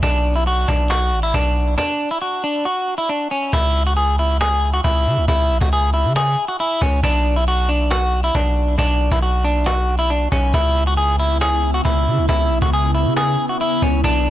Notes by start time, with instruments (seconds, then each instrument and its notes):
0.03 808-style bass B1, clean electric guitar D4, cajon bass
0.36 clean electric guitar E4
0.47 clean electric guitar F#4, cajon slap
0.68 808-style bass B1, clean electric guitar D4, cajon bass
0.90 clean electric guitar F#4, cajon slap
1.12 808-style bass A1, cajon slap
1.23 clean electric guitar E4
1.34 808-style bass B1, clean electric guitar D4, cajon bass
1.56 cajon slap
1.78 clean electric guitar D4, cajon bass, cajon slap
2.11 clean electric guitar E4
2.22 clean electric guitar F#4
2.44 clean electric guitar D4
2.65 clean electric guitar F#4
2.98 clean electric guitar E4
3.09 clean electric guitar D4
3.31 clean electric guitar C#4
3.53 808-style bass C#2, clean electric guitar E4, cajon bass
3.87 clean electric guitar F#4
3.97 clean electric guitar G#4, cajon slap
4.19 clean electric guitar E4, cajon slap
4.41 clean electric guitar G#4, cajon slap
4.63 cajon slap
4.74 clean electric guitar F#4
4.84 808-style bass C#2, clean electric guitar E4, cajon bass
5.06 808-style bass C#3, cajon slap
5.17 808-style bass C#2
5.28 808-style bass C#2, clean electric guitar E4, cajon bass
5.50 808-style bass B1, cajon slap
5.61 808-style bass C#2, clean electric guitar F#4, cajon bass
5.72 clean electric guitar G#4, cajon slap
5.79 cajon slap
5.87 cajon slap
5.94 clean electric guitar E4, cajon slap
6.05 808-style bass C#3
6.16 clean electric guitar G#4, cajon slap
6.38 cajon slap
6.48 clean electric guitar F#4
6.60 clean electric guitar E4, cajon slap
6.82 808-style bass C#2, clean electric guitar C#4, cajon bass
7.03 808-style bass B1, clean electric guitar D4, cajon bass
7.36 clean electric guitar E4
7.47 clean electric guitar F#4, cajon slap
7.69 clean electric guitar D4, cajon slap
7.91 clean electric guitar F#4, cajon slap
8.13 cajon slap
8.24 clean electric guitar E4
8.35 808-style bass B1, clean electric guitar D4, cajon bass
8.57 cajon slap
8.78 808-style bass B1, clean electric guitar D4, cajon bass
9.01 cajon slap
9.12 808-style bass B1, clean electric guitar E4, cajon bass
9.22 clean electric guitar F#4, cajon slap
9.44 clean electric guitar D4, cajon slap
9.52 cajon slap
9.59 cajon slap
9.66 clean electric guitar F#4, cajon slap
9.73 cajon slap
9.81 cajon slap
9.88 cajon slap
9.99 clean electric guitar E4
10.10 clean electric guitar D4, cajon slap
10.32 808-style bass B1, clean electric guitar C#4, cajon bass
10.54 808-style bass C#2, ambient pad C#3 B3 E4, clean electric guitar E4, cajon bass
10.87 clean electric guitar F#4
10.97 clean electric guitar G#4, cajon slap
11.19 clean electric guitar E4, cajon slap
11.41 clean electric guitar G#4, cajon slap
11.63 cajon slap
11.74 clean electric guitar F#4
11.85 808-style bass C#2, clean electric guitar E4, cajon bass
12.07 808-style bass C#3, cajon slap
12.18 808-style bass C#2
12.29 808-style bass C#2, clean electric guitar E4, cajon bass
12.51 808-style bass B1, cajon slap
12.62 808-style bass C#2, clean electric guitar F#4, cajon bass
12.73 clean electric guitar G#4, cajon slap
12.80 cajon slap
12.87 cajon slap
12.95 clean electric guitar E4, cajon slap
13.05 808-style bass C#3
13.17 clean electric guitar G#4, cajon slap
13.38 cajon slap
13.49 clean electric guitar F#4
13.60 clean electric guitar E4, cajon slap
13.82 808-style bass C#2, clean electric guitar C#4, cajon bass
14.04 808-style bass B1, ambient pad D3 D4, clean electric guitar D4, cajon bass